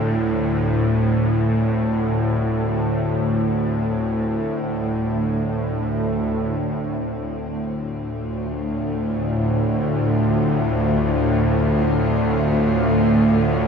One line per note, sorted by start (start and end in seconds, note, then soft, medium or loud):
0.00 6.33 D2 medium
0.00 6.33 A2 medium
0.00 13.68 D3 medium
0.00 6.33 G3 medium
0.00 13.68 C4 medium
0.00 6.35 E4 medium
0.00 6.36 E4 medium
6.34 13.68 D2 medium
6.34 13.68 A2 medium
6.34 13.68 D4 medium
6.62 13.68 A3 medium
8.12 13.68 F4 medium